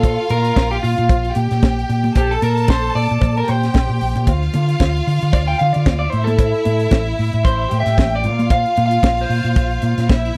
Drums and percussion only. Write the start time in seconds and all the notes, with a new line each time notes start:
0.03 kick, closed hi-hat, cowbell, muted conga
0.29 closed hi-hat, muted conga
0.44 closed hi-hat
0.56 kick, snare, cowbell, high conga
0.72 closed hi-hat
0.84 open hi-hat
0.98 closed hi-hat
1.09 kick, closed hi-hat, cowbell
1.24 closed hi-hat
1.35 closed hi-hat, muted conga
1.51 snare, closed hi-hat
1.62 kick, snare, cowbell, high conga
1.79 closed hi-hat
1.89 closed hi-hat
2.04 closed hi-hat, high conga
2.15 kick, closed hi-hat, cowbell, muted conga
2.31 closed hi-hat
2.42 closed hi-hat, muted conga
2.57 closed hi-hat
2.68 kick, snare, cowbell, high conga
2.97 open hi-hat
3.10 closed hi-hat
3.21 kick, closed hi-hat, cowbell, low conga
3.37 closed hi-hat
3.48 closed hi-hat, muted conga
3.63 snare, closed hi-hat
3.74 kick, snare, cowbell, high conga
3.89 high conga
4.01 open hi-hat
4.16 closed hi-hat, high conga
4.27 kick, closed hi-hat, cowbell, muted conga
4.43 closed hi-hat
4.54 closed hi-hat, muted conga
4.68 closed hi-hat
4.80 kick, snare, cowbell, high conga
4.96 closed hi-hat
5.08 open hi-hat
5.21 closed hi-hat
5.33 kick, closed hi-hat, cowbell
5.59 closed hi-hat
5.74 closed hi-hat
5.86 kick, snare, cowbell, high conga
6.12 closed hi-hat
6.27 closed hi-hat, high conga
6.39 kick, closed hi-hat, cowbell, muted conga
6.54 closed hi-hat
6.65 closed hi-hat, muted conga
6.79 closed hi-hat
6.91 kick, snare, cowbell, high conga
7.19 open hi-hat
7.33 closed hi-hat
7.45 kick, closed hi-hat, cowbell
7.71 closed hi-hat, muted conga
7.86 snare, closed hi-hat
7.97 kick, snare, cowbell, high conga
8.23 closed hi-hat
8.39 closed hi-hat, high conga
8.50 kick, closed hi-hat, cowbell, muted conga
8.65 closed hi-hat
8.76 closed hi-hat, muted conga
8.91 closed hi-hat
9.03 kick, snare, cowbell, high conga
9.18 closed hi-hat
9.30 open hi-hat
9.44 closed hi-hat
9.56 kick, closed hi-hat, cowbell
9.71 closed hi-hat
9.82 closed hi-hat, muted conga
9.98 snare, closed hi-hat
10.09 kick, snare, cowbell, high conga
10.25 closed hi-hat